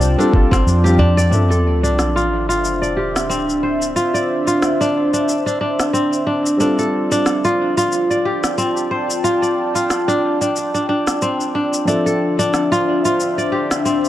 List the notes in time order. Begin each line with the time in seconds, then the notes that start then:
Already playing: C2 G3 C4 D4 F4 C5 D5 G5 A5
0.01 shaker
0.18 G3 C4 D4 F4 A4, shaker
0.33 G3 C4 D4 F4 A4, kick
0.51 C4, kick, snare, shaker
0.66 F2, shaker
0.84 G3 C4 D4 F4 G4, shaker
0.98 D4, udu
1.17 D5, shaker
1.30 F3 C4 D4 A4 E5, sub drop, shaker
1.50 A4, shaker
1.83 D4, shaker
1.99 snare, shaker
2.04 C5
2.14 F4 E5, shaker
2.49 F4, shaker
2.65 shaker
2.82 D5, shaker
2.97 G4
3.16 snare, shaker
3.30 C4, shaker
3.49 shaker
3.63 C5
3.82 shaker
3.96 F4, shaker
4.14 D5, shaker
4.47 F4, shaker
4.62 snare, shaker
4.81 D4, shaker
5.13 D4, shaker
5.29 shaker
5.46 D4, shaker
5.61 D4
5.80 snare, shaker
5.93 C4, shaker
6.13 shaker
6.27 D4
6.46 shaker
6.57 G3 C4 D4 F4 A4, shaker
6.77 A4 D5, shaker
7.12 D4, shaker
7.26 snare, shaker
7.45 F4, shaker
7.77 F4, shaker
7.82 G5
7.92 shaker
8.10 D5, shaker
8.25 G4 A5
8.44 snare, shaker
8.58 C4, shaker
8.77 shaker
8.91 C5
9.10 shaker
9.24 F4, shaker
9.42 D5, shaker
9.75 F4, shaker
9.90 snare, shaker
10.08 D4, shaker
10.41 D4, shaker
10.56 shaker
10.74 D4, shaker
10.89 D4
11.07 snare, shaker
11.22 C4, shaker
11.41 shaker
11.55 D4
11.74 shaker
11.85 F3 C4 D4 E5, shaker
11.89 A4
12.06 A4, shaker
12.36 D4 E5
12.40 shaker
12.48 C5
12.54 snare, shaker
12.72 F4, shaker
13.05 F4, shaker
13.20 shaker
13.38 D5, shaker
13.52 G4
13.71 snare, shaker
13.85 C4, shaker
14.05 shaker